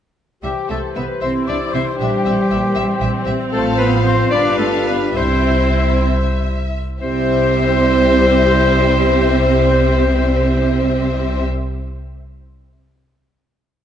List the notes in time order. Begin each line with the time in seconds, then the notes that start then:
0.43 C2 E3 G3 G4 C5 E5 G5
0.69 C2 A3 A4 E5 A5
0.94 C2 B3 B4 E5 B5
1.21 C2 C4 E4 C5 E5 C6
1.47 C2 D4 D5 E5 D6
1.73 C2 C4 C5 E5 C6
1.99 A#1 G3 D4 G4 E5 G5
2.25 A#1 C4 E5
2.50 A#1 A#3 E5
2.75 A#1 C4 E5
3.01 A#1 E5
3.25 A#1 E5
3.51 A1 F3 A3 F4 A4 C5 F5 A5
3.78 B3 B4 B5
4.04 C4 C5 C6
4.31 G1 G3 D4 B4 D5 F5 D6
4.58 A3 A4 A5
4.87 B3 B4 B5
5.16 C2 C4 E4 C5 E5 C6
7.00 C2 G3 C4 E4 G4 C5 E5